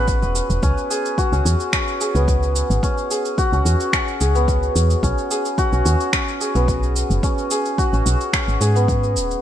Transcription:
Already playing: A1 B3 C#4 F#4 G#4 B4
0.08 kick, cabasa
0.22 E1 B4, cabasa
0.35 B4, cabasa
0.50 E1, cabasa
0.63 C#2 C#4, kick, cabasa
0.78 cabasa
0.90 G#4, cabasa
1.06 cabasa
1.18 F#4, kick, cabasa
1.32 C#2 C#4, cabasa
1.45 E2, cabasa
1.60 cabasa
1.73 C#4, finger snap, kick, cabasa
1.88 cabasa
2.01 G#4, cabasa
2.15 C#2 B3, cabasa
2.28 kick, cabasa
2.43 cabasa
2.56 cabasa
2.70 G#1, cabasa
2.83 C#4, kick, cabasa
2.98 cabasa
3.11 G#4, cabasa
3.25 cabasa
3.38 F#4, kick, cabasa
3.52 C#2 C#4, cabasa
3.65 E2, cabasa
3.80 cabasa
3.93 C#4, finger snap, kick, cabasa
4.08 cabasa
4.21 C#2 G#4, cabasa
4.35 B3, cabasa
4.48 kick, cabasa
4.63 cabasa
4.76 E2, cabasa
4.90 cabasa
5.03 B1 C#4, kick, cabasa
5.18 cabasa
5.31 G#4, cabasa
5.45 cabasa
5.58 F#4, kick, cabasa
5.72 B1 C#4, cabasa
5.86 D#2, cabasa
6.00 cabasa
6.13 C#4, finger snap, kick, cabasa
6.28 cabasa
6.41 G#4, cabasa
6.55 B1 B3, cabasa
6.68 kick, cabasa
6.83 cabasa
6.96 cabasa
7.10 F#1, cabasa
7.23 C#4, kick, cabasa
7.38 cabasa
7.51 G#4, cabasa
7.65 cabasa
7.78 F#4, kick, cabasa
7.93 A1 C#4, cabasa
8.06 B1, cabasa
8.21 cabasa
8.33 C#4, finger snap, kick, cabasa
8.48 G#1, cabasa
8.61 G#2 G#4, cabasa
8.75 B3, cabasa
8.88 kick, cabasa
9.04 cabasa
9.16 D#1, cabasa
9.31 cabasa

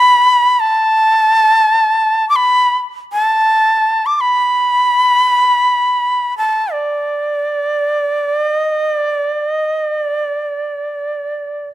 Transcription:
Already playing: B5
0.60 A5
2.29 D6
2.36 B5
3.13 A5
4.06 D6
4.16 D6
4.21 B5
6.38 A5
6.73 D5
8.48 D#5
8.95 D5
9.46 D#5
9.94 D5

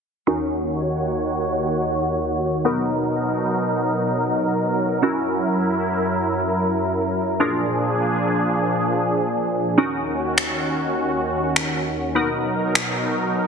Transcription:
0.27 D#2 D#3 C#4 D#4 F#4 A#4 C#5
2.65 B2 F#3 B3 D#4 F#4 A#4
5.02 F#2 C#4 E4 F#4 A#4
7.40 A#2 F3 D4 F4 G#4 A#4
9.78 D#2 D#3 C#4 D#4 F#4 A#4
10.38 finger snap
11.56 finger snap
12.15 B2 F#3 B3 D#4 F#4 A#4
12.75 finger snap

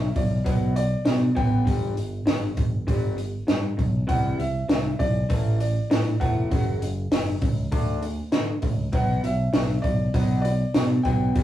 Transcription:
Already playing: B2 F#3 E5
0.15 B1 B2 F#3 D5, kick, open hi-hat
0.44 B1 B2 F#3 B3, kick, open hi-hat
0.76 B2 F#3 D5, open hi-hat
1.05 B2 F#3, snare, open hi-hat
1.35 A1 B2 F#3 B3 G5, kick, open hi-hat
1.65 G1 G2 D3 G3, kick, open hi-hat
1.95 G1 G2 D3, open hi-hat
2.26 G1 G2 D3, snare, open hi-hat
2.57 G1 G2 D3, kick, open hi-hat
2.87 G1 G2 D3 G3, kick, open hi-hat
3.16 G2 D3, open hi-hat
3.47 G2 D3, snare, open hi-hat
3.77 B1 G2 D3, kick, open hi-hat
4.07 C2 C3 E3 G3 F#5, kick, open hi-hat
4.38 C2 C3 E3 E5, open hi-hat
4.68 C2 C3 E3, snare, open hi-hat
4.99 B1 C3 E3 D5, kick, open hi-hat
5.29 A1 A2 E3 A3, kick, open hi-hat
5.60 A2 E3 D5, open hi-hat
5.90 A2 E3, snare, open hi-hat
6.20 E1 A2 E3 A3 F#5, kick, open hi-hat
6.51 F#1 F#2 C#3 F#3, kick, open hi-hat
6.81 F#1 F#2 C#3, open hi-hat
7.12 F#1 F#2 C#3, snare, open hi-hat
7.41 C#2 F#2 C#3, kick, open hi-hat
7.72 D2 D3 A3 D4, kick, open hi-hat
8.02 D3 A3, open hi-hat
8.32 D3 A3, snare, open hi-hat
8.62 C#2 D3 A3, kick, open hi-hat
8.92 B1 B2 F#3 B3 F#5, kick, open hi-hat
9.23 B1 B2 F#3 E5, open hi-hat
9.53 B1 B2 F#3, snare, open hi-hat
9.82 B1 B2 F#3 D5, kick, open hi-hat
10.14 B1 B2 F#3 B3, kick, open hi-hat
10.42 B2 F#3 D5, open hi-hat
10.74 B2 F#3, snare, open hi-hat
11.03 B1 B2 F#3 B3 G5, kick, open hi-hat
11.35 G1 G2 D3 G3, kick, open hi-hat

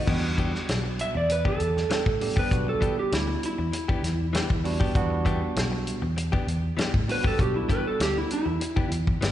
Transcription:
0.06 E2 E3 G3 B3 D4 F#4 G4, kick, crash
0.23 muted clean electric guitar stroke
0.37 E3 B3 D4 G4, kick, closed hi-hat
0.53 muted clean electric guitar stroke, snare
0.69 B1, snare, closed hi-hat
0.84 muted clean electric guitar stroke
0.99 E5, closed hi-hat
1.14 E2 D5, muted clean electric guitar stroke
1.29 B4, muted clean electric guitar stroke, closed hi-hat
1.45 E3 B3 D4 G4 A4, kick
1.59 E2, muted clean electric guitar stroke, closed hi-hat
1.77 snare
1.90 E3 B3 D4 G4, snare, closed hi-hat
2.06 A2, muted clean electric guitar stroke, kick
2.20 G3 B3 D4 G4, muted clean electric guitar stroke, open hi-hat
2.36 B3 D4 G4 B4, kick
2.51 B1 G3 B3 D4 F#4, kick, closed hi-hat
2.67 A4, muted clean electric guitar stroke
2.81 E3 B3 D4 G4, kick, closed hi-hat
2.97 G4, muted clean electric guitar stroke
3.12 D2 E4, snare, closed hi-hat
3.28 muted clean electric guitar stroke
3.43 E4, closed hi-hat
3.58 E2, muted clean electric guitar stroke
3.73 muted clean electric guitar stroke, closed hi-hat
3.88 E3 B3 D4 G4, muted fingered electric bass stroke, kick
4.03 E2, muted clean electric guitar stroke, snare, closed hi-hat
4.33 E3 B3 D4 G4, snare, closed hi-hat
4.50 E2, muted clean electric guitar stroke, kick
4.64 G3 B3 D4 F#4, muted clean electric guitar stroke, open hi-hat
4.80 B3 D4 G4, kick
4.95 E2 G3 B3 D4 F#4, kick, closed hi-hat
5.10 muted clean electric guitar stroke
5.25 E3 B3 D4 G4, kick, closed hi-hat
5.41 muted clean electric guitar stroke
5.56 B1, snare, closed hi-hat
5.72 muted clean electric guitar stroke
5.87 closed hi-hat
6.02 E2, muted clean electric guitar stroke
6.17 muted clean electric guitar stroke, closed hi-hat
6.32 E3 B3 D4 G4, kick
6.47 E2, muted clean electric guitar stroke, closed hi-hat
6.77 E3 B3 D4 G4, snare, closed hi-hat
6.93 A2, muted clean electric guitar stroke, kick
7.08 G3 B3 D4 F#4 B4, muted clean electric guitar stroke, open hi-hat
7.24 B3 D4 G4 A4, kick
7.39 B1 G3 B3 D4 F#4 G4, kick, closed hi-hat
7.54 E4, muted clean electric guitar stroke
7.69 E3 B3 D4 G4 B4, kick, closed hi-hat
7.85 A4, muted clean electric guitar stroke
8.00 D2 G4, snare, closed hi-hat
8.15 E4, muted clean electric guitar stroke
8.30 E4, closed hi-hat
8.46 E2, muted clean electric guitar stroke
8.61 muted clean electric guitar stroke, closed hi-hat
8.76 E3 B3 D4 G4, kick
8.91 E2, muted clean electric guitar stroke, closed hi-hat
9.07 kick
9.21 G1 E3 B3 D4 G4, snare, closed hi-hat

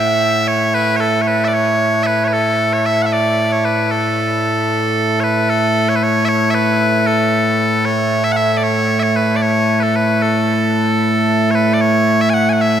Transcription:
Already playing: A2 A3 E5
0.47 C#5
0.74 B4
0.96 C#5
1.00 A4
1.22 C#5
1.27 B4
1.44 D5 E5
1.53 C#5
2.03 B4 E5
2.24 B4 C#5
2.33 A4
2.73 C#5
2.86 E5
3.02 E5 F#5
3.13 D5
3.52 C#5
3.65 B4
3.91 A4
5.20 B4 C#5
5.50 A4
5.89 C#5
5.96 B4
6.03 C#5
6.25 C#5 E5
6.50 E5
6.54 B4
7.07 A4
7.85 C#5
8.24 E5
8.32 F#5
8.37 E5
8.57 D5
8.63 C#5
8.99 C#5 E5
9.16 B4
9.36 D5
9.42 C#5
9.80 A4 B4
9.96 B4
10.22 A4
11.51 C#5
11.55 B4
11.73 D5
11.81 C#5
12.21 E5
12.30 F#5 G#5
12.49 F#5 G#5
12.61 E5

